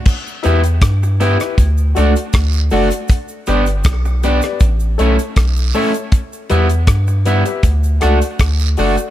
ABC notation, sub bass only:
X:1
M:4/4
L:1/16
Q:1/4=79
K:Edor
V:1 name="Sub bass" clef=bass
z2 E,,2 G,,3 z D,,2 C,, z D,,2 F,,, z | z2 G,,,2 B,,,3 z A,,,2 B,,, z B,,,2 z2 | z2 E,,2 G,,3 z D,,2 C,, z D,,2 F,,, z |]